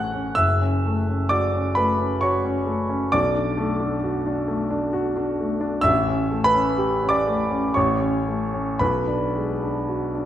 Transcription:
Already playing: A1 A3 C#4 F#5 F#6
0.14 C#4
0.35 F#1 E5 E6
0.62 C#4
0.86 A3
1.09 C#4
1.29 F#4 D5 D6
1.53 C#4
1.75 A3 B4 B5
1.98 C#4
2.21 F#4 C#5 C#6
2.45 C#4
2.66 A3
2.90 C#4
3.12 B1 D5 D6
3.35 D4
3.57 A3
3.80 D4
4.04 F#4
4.26 D4
4.48 A3
4.70 D4
4.93 F#4
5.17 D4
5.41 A3
5.61 D4
5.81 A1 E5 E6
6.08 C#4
6.31 A3
6.44 B4 B5
6.54 C#4
6.78 G4
7.03 C#4
7.09 D5 D6
7.27 A3
7.51 C#4
7.74 A1 C#5 C#6
8.01 C#4
8.28 A3
8.54 C#4
8.79 B1 B4 B5
9.08 D4
9.35 G#3
9.63 D4
9.89 F#4
10.15 D4

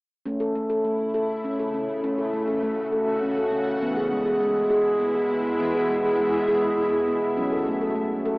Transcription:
0.26 C#3 A3 C#4 E4
0.40 A4
0.55 A3
0.70 A4
0.85 A3
1.14 A4
1.45 C#4
1.60 A4
1.74 C#4
2.04 A3 C#4 F#4
2.18 A4
2.33 A3
2.47 A4
2.63 A3
2.92 A4
3.22 C#4
3.37 A4
3.52 C#4
3.81 B2 E3 G#3 B3 E4
3.97 G#4
4.12 G#3
4.26 G#4
4.40 G#3
4.70 G#4
5.00 B3
5.15 G#4
5.30 B3
5.59 E3 B3
5.75 G#4
5.89 G#3
6.05 G#4
6.19 G#3
6.48 G#4
6.78 B3
6.92 G#4
7.08 B3
7.37 C#3 F#3 A3 C#4 F#4
7.52 A4
7.67 A3
7.81 A4
7.95 A3
8.25 A4

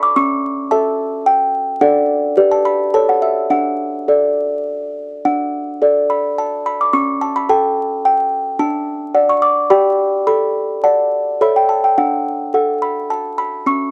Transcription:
Already playing: A4 D5
0.03 D6
0.16 C#4 C#6
0.71 A4 E5 A5
1.26 G5
1.81 D4 A4 D5 F#5
2.37 G4 B4 D5
2.51 A5
2.65 B5
2.94 A4 C#5 A5
3.09 F#5
3.22 E5
3.50 D4 F#5
4.08 A4 D5
5.25 D4 F#5
5.82 A4 D5
6.10 B5
6.38 A5
6.66 B5
6.81 D6
6.93 C#4 C#6
7.21 A5
7.36 B5
7.49 A4 G5 A5
8.05 G5
8.59 D4 A5
9.15 D5 F#5
9.29 C#6
9.42 D6
9.70 G4 D5 G5 B5
10.27 A4 B5
10.84 D5 F#5 A5
11.41 A4 C#5 E5 B5
11.56 G5
11.69 A5
11.84 G5
11.98 D4 F#5
12.54 A4 F#5
12.82 B5
13.10 A5
13.38 B5
13.66 C#4 C#6

